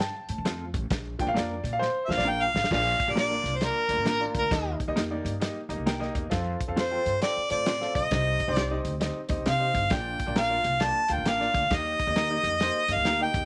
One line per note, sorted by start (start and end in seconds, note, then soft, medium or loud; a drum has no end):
0.00 0.42 A5 medium
0.00 snare loud
0.00 closed hi-hat medium
0.29 0.36 A2 medium
0.29 closed hi-hat medium
0.38 0.75 F2 medium
0.45 0.64 A3 medium
0.45 0.64 C4 medium
0.45 0.64 F4 medium
0.45 0.65 A4 medium
0.45 snare loud
0.45 closed hi-hat medium
0.74 0.87 A1 loud
0.74 kick loud
0.74 closed hi-hat medium
0.90 1.13 A#1 loud
0.90 kick loud
0.90 snare loud
0.90 closed hi-hat medium
1.19 1.46 F3 soft
1.19 1.46 A#3 soft
1.19 1.46 D4 medium
1.19 1.28 G5 loud
1.19 kick medium
1.19 closed hi-hat medium
1.27 1.33 A#1 loud
1.27 1.36 F5 loud
1.34 1.58 F2 medium
1.34 1.53 A#3 medium
1.34 1.54 D4 loud
1.34 1.54 F4 medium
1.34 1.54 A#4 loud
1.34 1.74 D5 medium
1.34 snare loud
1.34 closed hi-hat medium
1.64 1.88 A#2 medium
1.64 closed hi-hat medium
1.73 1.80 F5 loud
1.79 2.18 C5 loud
1.79 snare medium
2.05 2.15 F2 medium
2.05 2.23 F3 soft
2.05 2.14 E5 medium
2.09 2.24 A#3 soft
2.09 2.24 D4 soft
2.09 2.30 F5 loud
2.09 snare medium
2.17 2.46 A#1 medium
2.17 2.26 D5 medium
2.17 snare medium
2.25 2.44 A#3 medium
2.25 2.44 D4 medium
2.25 2.44 F4 medium
2.25 2.45 A#4 medium
2.25 2.68 F5 medium
2.29 2.44 G5 loud
2.43 2.72 F5 loud
2.54 2.67 A1 medium
2.54 snare loud
2.64 snare medium
2.71 2.93 A#1 loud
2.71 3.41 A#2 medium
2.71 2.98 A#3 medium
2.71 2.98 D4 medium
2.71 2.98 F4 medium
2.71 2.98 D5 medium
2.71 3.13 F5 loud
2.71 kick loud
2.71 snare loud
2.71 crash loud
3.00 kick medium
3.00 closed hi-hat medium
3.08 3.36 A#1 medium
3.08 3.20 A#3 medium
3.08 3.20 D4 medium
3.08 3.20 F4 medium
3.08 3.20 G4 medium
3.08 3.18 D5 medium
3.16 3.34 A#3 medium
3.16 3.35 D4 medium
3.16 3.35 F4 medium
3.16 3.35 A#4 loud
3.16 3.57 D5 loud
3.16 snare loud
3.16 closed hi-hat medium
3.30 3.52 A#3 medium
3.30 3.52 D4 medium
3.30 3.52 F4 medium
3.30 3.52 D5 medium
3.44 3.68 C2 medium
3.44 closed hi-hat medium
3.56 3.63 C5 medium
3.61 3.79 A#3 medium
3.61 3.79 D4 medium
3.61 3.79 F4 medium
3.61 4.32 A#4 medium
3.61 3.79 D5 medium
3.61 snare loud
3.61 closed hi-hat medium
3.89 3.95 D2 medium
3.89 4.05 A#3 medium
3.89 4.05 D4 medium
3.89 4.05 F4 medium
3.89 4.05 D5 medium
3.89 closed hi-hat medium
3.97 4.26 A1 medium
4.05 4.24 A#3 medium
4.05 4.24 D4 medium
4.05 4.25 F4 medium
4.05 4.25 A#4 medium
4.05 snare loud
4.05 closed hi-hat medium
4.20 4.42 A#3 medium
4.20 4.42 D4 medium
4.20 4.42 F4 medium
4.20 4.42 D5 medium
4.35 4.48 D2 medium
4.35 4.78 A#4 medium
4.35 kick medium
4.35 closed hi-hat medium
4.51 4.73 D#2 loud
4.51 5.21 D#3 medium
4.51 4.78 A#3 medium
4.51 4.78 D#4 medium
4.51 4.78 G4 medium
4.51 4.78 D#5 medium
4.51 kick loud
4.51 snare loud
4.51 closed hi-hat medium
4.80 kick medium
4.80 closed hi-hat medium
4.88 4.94 D#2 medium
4.88 5.00 A#3 medium
4.88 5.00 D#4 medium
4.88 5.00 G4 medium
4.88 5.00 D#5 loud
4.96 5.19 F2 medium
4.96 5.14 A#3 medium
4.96 5.15 D#4 medium
4.96 5.15 G4 medium
4.96 5.15 A#4 medium
4.96 snare loud
4.96 closed hi-hat medium
5.10 5.32 A#3 medium
5.10 5.32 D#4 medium
5.10 5.32 G4 medium
5.10 5.32 D5 loud
5.25 5.49 G2 medium
5.25 closed hi-hat medium
5.40 5.59 A#3 medium
5.40 5.59 D#4 medium
5.40 5.59 G4 medium
5.40 5.59 D#5 medium
5.40 snare loud
5.40 closed hi-hat medium
5.69 5.76 D2 medium
5.69 5.85 A#3 medium
5.69 5.85 D#4 medium
5.69 5.85 G4 medium
5.69 5.85 D#5 medium
5.69 5.85 A#5 medium
5.69 closed hi-hat medium
5.78 6.06 C2 medium
5.86 6.05 A#3 medium
5.86 6.05 D#4 medium
5.86 6.05 G4 medium
5.86 6.06 A#4 medium
5.86 6.13 G5 medium
5.86 snare loud
5.86 closed hi-hat medium
6.00 6.22 A#3 loud
6.00 6.22 D#4 medium
6.00 6.22 G4 medium
6.00 6.13 D#5 loud
6.00 snare soft
6.15 6.28 E2 loud
6.15 6.30 D#5 medium
6.15 kick medium
6.15 closed hi-hat medium
6.30 6.54 F2 loud
6.30 6.58 C4 medium
6.30 6.57 F4 medium
6.30 6.58 A4 medium
6.30 6.58 F5 medium
6.30 kick loud
6.30 snare loud
6.30 closed hi-hat medium
6.61 kick loud
6.61 closed hi-hat medium
6.68 6.97 F2 medium
6.68 6.80 C4 medium
6.68 6.80 F4 medium
6.68 6.80 A4 medium
6.68 6.80 F5 medium
6.76 6.95 C4 medium
6.76 6.95 F4 medium
6.76 6.96 A4 medium
6.76 6.96 C5 medium
6.76 7.20 C5 medium
6.76 snare loud
6.76 closed hi-hat medium
6.91 7.12 C4 medium
6.91 7.12 F4 medium
6.91 7.12 A4 medium
6.91 7.13 G5 medium
7.06 7.18 G2 medium
7.06 closed hi-hat medium
7.21 7.39 C4 medium
7.21 7.39 F4 medium
7.21 7.39 A4 medium
7.21 7.49 D5 loud
7.21 7.40 G5 medium
7.21 snare loud
7.21 closed hi-hat medium
7.37 muted upright bass stroke soft
7.49 7.86 A2 medium
7.49 7.65 C4 medium
7.49 7.65 F4 medium
7.49 7.66 A4 medium
7.49 7.66 C5 medium
7.49 7.92 D5 loud
7.49 closed hi-hat medium
7.66 7.85 C4 medium
7.66 7.85 F4 medium
7.66 7.86 A4 medium
7.66 7.86 C5 medium
7.66 snare loud
7.66 closed hi-hat medium
7.81 8.02 C4 medium
7.81 8.02 F4 medium
7.81 8.03 A4 medium
7.81 8.03 F5 medium
7.81 snare soft
7.95 8.08 B1 medium
7.95 8.53 D#5 medium
7.95 kick medium
7.95 closed hi-hat medium
8.11 8.34 C2 loud
8.11 8.81 C3 medium
8.11 8.38 C4 medium
8.11 8.39 D#4 medium
8.11 8.39 G4 medium
8.11 8.39 D#5 medium
8.11 kick loud
8.11 snare loud
8.11 closed hi-hat medium
8.40 kick medium
8.40 closed hi-hat medium
8.48 8.77 C2 medium
8.48 8.60 C4 loud
8.48 8.60 D#4 medium
8.48 8.60 G4 medium
8.48 8.60 C5 loud
8.53 8.75 C4 medium
8.53 8.81 D5 medium
8.53 snare loud
8.53 closed hi-hat medium
8.57 8.75 D#4 medium
8.57 8.75 G4 medium
8.57 8.76 C5 medium
8.71 8.92 C4 medium
8.71 8.92 D#4 medium
8.71 8.93 G4 medium
8.71 8.92 D#5 loud
8.85 9.09 D2 medium
8.85 closed hi-hat medium
9.00 9.19 C4 medium
9.00 9.19 D#4 medium
9.00 9.19 G4 medium
9.00 9.19 D#5 medium
9.00 snare loud
9.00 closed hi-hat medium
9.29 9.36 D#2 medium
9.29 9.45 C4 medium
9.29 9.45 D#4 medium
9.29 9.45 G4 medium
9.29 9.45 D#5 medium
9.29 kick medium
9.29 closed hi-hat medium
9.38 9.44 C2 medium
9.46 9.68 C3 medium
9.46 9.65 C4 medium
9.46 9.65 D#4 medium
9.46 9.65 G4 medium
9.46 9.65 C5 medium
9.46 9.94 F5 loud
9.46 snare loud
9.46 closed hi-hat medium
9.59 9.82 C4 medium
9.59 9.82 D#4 medium
9.59 9.82 G4 medium
9.59 9.82 D#5 medium
9.74 9.87 G1 medium
9.74 kick medium
9.74 closed hi-hat medium
9.90 10.13 A#1 loud
9.90 10.60 A#2 medium
9.90 10.18 A#3 medium
9.90 10.18 D4 medium
9.90 10.18 F4 medium
9.90 10.18 D5 medium
9.90 10.37 G5 loud
9.90 kick loud
9.90 snare loud
9.90 closed hi-hat medium
10.20 kick medium
10.20 closed hi-hat medium
10.26 10.57 A#1 medium
10.26 10.39 A#3 medium
10.26 10.39 D4 medium
10.26 10.39 F4 medium
10.26 10.40 D5 medium
10.36 10.54 A#3 medium
10.36 10.55 D4 medium
10.36 10.55 F4 loud
10.36 10.55 A#4 medium
10.36 10.85 F5 loud
10.36 snare loud
10.36 closed hi-hat medium
10.48 10.71 A#3 medium
10.48 10.71 D4 medium
10.48 10.71 F4 medium
10.48 10.72 D5 medium
10.64 10.89 C2 medium
10.64 closed hi-hat medium
10.80 10.99 A#3 medium
10.80 10.99 D4 medium
10.80 10.99 F4 medium
10.80 10.99 D5 medium
10.80 11.14 A5 loud
10.80 snare loud
10.80 closed hi-hat medium
11.08 11.16 D2 medium
11.08 11.25 A#3 medium
11.08 11.25 D4 medium
11.08 11.25 F4 medium
11.08 11.25 F5 medium
11.08 11.30 G5 loud
11.08 closed hi-hat medium
11.18 11.46 A1 medium
11.26 11.44 A#3 medium
11.26 11.45 D4 medium
11.26 11.45 F4 medium
11.26 11.45 A#4 medium
11.26 11.76 F5 loud
11.26 snare loud
11.26 closed hi-hat medium
11.40 11.62 A#3 medium
11.40 11.62 D4 medium
11.40 11.62 F4 medium
11.40 11.62 D5 medium
11.40 snare soft
11.54 11.67 D2 medium
11.54 kick loud
11.54 closed hi-hat medium
11.70 11.93 D#2 loud
11.70 12.40 D#3 medium
11.70 11.98 A#3 medium
11.70 11.98 D#4 medium
11.70 11.98 G4 medium
11.70 11.98 D#5 medium
11.70 kick loud
11.70 snare loud
11.70 closed hi-hat medium
11.74 12.94 D#5 loud
12.00 kick medium
12.00 closed hi-hat medium
12.07 12.36 D#2 medium
12.07 12.19 A#3 medium
12.07 12.19 D#4 medium
12.07 12.19 G4 medium
12.07 12.20 D#5 medium
12.16 12.34 A#3 medium
12.16 12.35 D#4 medium
12.16 12.35 G4 medium
12.16 12.35 A#4 medium
12.16 snare loud
12.16 closed hi-hat medium
12.30 12.52 A#3 medium
12.30 12.52 D#4 medium
12.30 12.52 G4 medium
12.30 12.52 D#5 medium
12.43 12.68 F2 medium
12.43 closed hi-hat medium
12.60 12.79 A#3 medium
12.60 12.79 D#4 medium
12.60 12.79 G4 medium
12.60 12.79 C5 loud
12.60 snare loud
12.60 closed hi-hat medium
12.88 12.95 G2 medium
12.88 13.04 A#3 medium
12.88 13.05 D#4 medium
12.88 13.05 G4 medium
12.88 13.05 D#5 medium
12.88 13.21 F5 loud
12.88 closed hi-hat medium
12.96 13.25 D2 medium
13.05 13.24 A#3 medium
13.05 13.25 D#4 medium
13.05 13.25 G4 medium
13.05 13.25 A#4 medium
13.05 snare medium
13.05 closed hi-hat medium
13.20 13.41 A#3 medium
13.20 13.42 D#4 medium
13.20 13.42 G4 medium
13.20 13.42 D#5 medium
13.20 13.45 G5 loud
13.34 13.45 E2 medium
13.34 kick medium
13.34 closed hi-hat medium